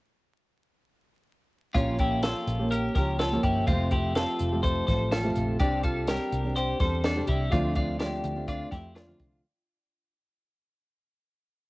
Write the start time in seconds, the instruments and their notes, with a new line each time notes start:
1.74 picked electric bass A#1, steel-string acoustic guitar A#2 F3 A#3 C#4 G4, clean electric guitar C#4 F4, kick, closed hi-hat
1.99 clean electric guitar E4 G4, kick, closed hi-hat
2.23 steel-string acoustic guitar F3 A#3 C#4 G4, clean electric guitar F4 A4, snare, closed hi-hat
2.47 picked electric bass A#1, closed hi-hat
2.59 steel-string acoustic guitar A#3 C#4 G4
2.71 clean electric guitar G4 A#4, closed hi-hat
2.95 picked electric bass C#2, steel-string acoustic guitar F3 A#3 C#4 G4, clean electric guitar G4 A#4, kick, snare, closed hi-hat
3.19 clean electric guitar F4 A4, snare, closed hi-hat
3.32 steel-string acoustic guitar A#2 F3 A#3 C#4 G4
3.43 picked electric bass G1, clean electric guitar E4 G4, kick, closed hi-hat
3.67 picked electric bass F1, steel-string acoustic guitar F2 C3 F3 A3 C4 G4, clean electric guitar C4 F4, kick, closed hi-hat
3.91 clean electric guitar E4 G4, kick, closed hi-hat
4.15 steel-string acoustic guitar F3 A3 C4 G4, clean electric guitar F4 A4, snare, closed hi-hat
4.39 picked electric bass F1, closed hi-hat
4.52 steel-string acoustic guitar F3 A3 C4 G4
4.63 clean electric guitar A4 C5, kick, closed hi-hat
4.87 picked electric bass A1, steel-string acoustic guitar F3 A3 C4 G4, clean electric guitar A4 C5, kick, snare, closed hi-hat
5.11 clean electric guitar F4 A4, snare, closed hi-hat
5.23 steel-string acoustic guitar F2 C3 F3 A3 C4 G4
5.35 picked electric bass A#1, closed hi-hat
5.60 picked electric bass C2, steel-string acoustic guitar C3 G3 C4 D4 G4, clean electric guitar D4 G4, kick, closed hi-hat
5.83 clean electric guitar F4 A4, kick, closed hi-hat
6.07 steel-string acoustic guitar G3 C4 D4 G4, clean electric guitar G4 A#4, snare, closed hi-hat
6.32 picked electric bass C2, closed hi-hat
6.44 steel-string acoustic guitar C4 D4 G4
6.56 clean electric guitar G4 C5, closed hi-hat
6.80 picked electric bass E2, steel-string acoustic guitar G3 C4 D4 G4, clean electric guitar A4 C5, kick, snare, closed hi-hat
7.04 clean electric guitar D4 A4, snare, closed hi-hat
7.16 steel-string acoustic guitar C3 G3 C4 D4 G4
7.27 picked electric bass C2, clean electric guitar E4 G4, kick, closed hi-hat
7.52 picked electric bass D2, steel-string acoustic guitar D3 F3 A3 C4 F4, clean electric guitar D4 F4, kick, closed hi-hat
7.75 clean electric guitar D4 F4, kick, closed hi-hat
7.99 steel-string acoustic guitar F3 A3 C4 F4, clean electric guitar D4 G4, snare, closed hi-hat
8.24 picked electric bass D2, closed hi-hat
8.35 steel-string acoustic guitar A3 C4 F4
8.48 clean electric guitar D4 F4, kick, closed hi-hat
8.71 picked electric bass F2, steel-string acoustic guitar F3 A3 C4 F4, clean electric guitar E4 G4, kick, snare, closed hi-hat
8.95 clean electric guitar D4 F4, snare, closed hi-hat
9.07 steel-string acoustic guitar D3 F3 A3 C4 F4
9.20 picked electric bass C2, kick, closed hi-hat